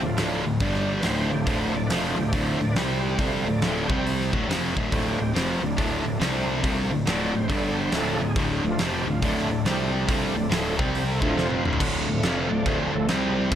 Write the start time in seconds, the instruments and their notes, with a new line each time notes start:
Already playing: tonewheel organ F3 A3 D4
0.01 picked electric bass D1, distorted electric guitar D2 A2
0.06 tonewheel organ F4
0.17 picked electric bass D1, distorted electric guitar D2 A2 D3, snare, open hi-hat
0.44 picked electric bass D1, distorted electric guitar D2 A2
0.60 picked electric bass G1, distorted electric guitar G2 D3 G3, tonewheel organ D3 G3 D4, kick, open hi-hat
0.74 snare
1.00 picked electric bass D1, distorted electric guitar D2 A2, tonewheel organ B4, snare, open hi-hat
1.04 distorted electric guitar D3, tonewheel organ C5
1.30 picked electric bass D1, distorted electric guitar D2 A2, tonewheel organ F3 A3 D4 G4
1.47 picked electric bass D1, distorted electric guitar D2 A2 D3, tonewheel organ C5, kick, open hi-hat
1.74 picked electric bass D1, distorted electric guitar D2 A2, tonewheel organ D5
1.87 picked electric bass F1, distorted electric guitar F2 C3, tonewheel organ B4, snare, open hi-hat
1.91 distorted electric guitar F3, tonewheel organ C5
2.17 picked electric bass D1, distorted electric guitar D2 A2, tonewheel organ G4
2.33 picked electric bass D1, distorted electric guitar D2 A2 D3, tonewheel organ C5, kick, open hi-hat
2.59 picked electric bass D1, distorted electric guitar D2 A2
2.65 tonewheel organ D5
2.72 picked electric bass C2, tonewheel organ C3 G3 B4, distorted electric guitar C3, snare, open hi-hat
2.77 distorted electric guitar G3 C4, tonewheel organ C4 C5
3.04 tonewheel organ G4
3.19 picked electric bass C2, distorted electric guitar C3 G3 C4, tonewheel organ D3 F3 A3 C5, kick, open hi-hat
3.45 picked electric bass D1, distorted electric guitar D2 A2
3.50 tonewheel organ D5
3.61 picked electric bass D1, distorted electric guitar D2 A2 D3, tonewheel organ G5, snare, open hi-hat
3.89 picked electric bass C2, tonewheel organ C3 G3 C4, distorted electric guitar C3 G3 C4, kick
4.07 open hi-hat
4.21 snare
4.33 picked electric bass D1, distorted electric guitar D2 A2 D3, kick
4.48 picked electric bass F1, distorted electric guitar F2 C3 F3, snare, open hi-hat
4.76 picked electric bass D1, distorted electric guitar D2 A2 D3, kick
4.89 picked electric bass D1, distorted electric guitar D2 A2 D3, tonewheel organ D3 F3 A3 F#4, kick, open hi-hat
4.94 tonewheel organ G4
5.19 picked electric bass D1, distorted electric guitar D2 A2
5.33 picked electric bass F1, distorted electric guitar F2 C3 F3, snare, open hi-hat
5.50 tonewheel organ F4
5.61 picked electric bass D1, distorted electric guitar D2 A2
5.66 tonewheel organ D4
5.77 picked electric bass D1, distorted electric guitar D2 A2 D3, tonewheel organ A3 D4, kick, open hi-hat
6.04 picked electric bass D1, distorted electric guitar D2 A2
6.20 picked electric bass C2, distorted electric guitar C3 G3 C4, tonewheel organ C3 G3 C4, snare, open hi-hat
6.63 picked electric bass C2, distorted electric guitar C3 G3 C4, tonewheel organ F3 A3 D4, kick, open hi-hat
6.90 picked electric bass D1, distorted electric guitar D2 A2
7.06 picked electric bass D1, distorted electric guitar D2 A2 D3, tonewheel organ D5, snare, open hi-hat
7.34 picked electric bass D1, distorted electric guitar D2 A2, tonewheel organ C5
7.48 picked electric bass G1, distorted electric guitar G2 D3 G3, tonewheel organ D3 G3 D4 A4, kick, open hi-hat
7.78 tonewheel organ C5
7.92 picked electric bass D1, distorted electric guitar D2 A2 D3, tonewheel organ F3 A3 D4, snare, open hi-hat
7.96 tonewheel organ A4
8.19 picked electric bass D1, distorted electric guitar D2 A2
8.24 tonewheel organ G#4
8.35 picked electric bass D1, distorted electric guitar D2 A2 D3, kick, open hi-hat
8.40 tonewheel organ G4
8.63 picked electric bass D1, distorted electric guitar D2 A2
8.67 tonewheel organ F3 A3 D4 F4
8.78 picked electric bass F1, distorted electric guitar F2 C3 F3, tonewheel organ G4, snare, open hi-hat
9.05 picked electric bass D1, distorted electric guitar D2 A2
9.11 tonewheel organ F4
9.22 picked electric bass D1, distorted electric guitar D2 A2 D3, tonewheel organ A3 D4, kick, open hi-hat
9.38 snare
9.48 picked electric bass D1, distorted electric guitar D2 A2
9.65 picked electric bass C2, distorted electric guitar C3 G3 C4, tonewheel organ C3 G3 C4, snare, open hi-hat
10.09 picked electric bass C2, distorted electric guitar C3 G3 C4, tonewheel organ D3 F3 A3, kick, open hi-hat
10.35 picked electric bass D1, distorted electric guitar D2 A2
10.50 picked electric bass D1, distorted electric guitar D2 A2 D3, snare, open hi-hat
10.77 picked electric bass C2, distorted electric guitar C3 G3 C4, tonewheel organ C3 G3 C4, kick
10.95 tonewheel organ G4, open hi-hat
11.11 tonewheel organ A4
11.21 picked electric bass D1, distorted electric guitar D2 A2 D3, tonewheel organ D3 F3 A3 C4, kick
11.25 tonewheel organ F4
11.36 picked electric bass F1, distorted electric guitar F2 C3 F3, snare
11.50 high tom
11.64 picked electric bass D1, distorted electric guitar D2 A2 D3, mid tom
11.73 floor tom
11.80 picked electric bass D1, distorted electric guitar D2 A2 D3, tonewheel organ D3 F3 A3, kick, crash
12.07 picked electric bass D1, distorted electric guitar D2 A2
12.19 picked electric bass F1, distorted electric guitar F2, tonewheel organ E5
12.23 distorted electric guitar C3 F3, tonewheel organ F5, snare, crash
12.50 picked electric bass D1, distorted electric guitar D2 A2, tonewheel organ D5
12.66 picked electric bass D1, distorted electric guitar D2 A2 D3, tonewheel organ C5, kick, crash
12.92 picked electric bass D1, distorted electric guitar D2 A2, tonewheel organ D3 F3 A3 A4
13.08 picked electric bass C2, tonewheel organ C3 G3 C4 G#4, distorted electric guitar C3 G3 C4, snare, crash
13.36 tonewheel organ G4
13.50 picked electric bass C2, distorted electric guitar C3 G3, tonewheel organ F3 A3 D4 F4, kick, crash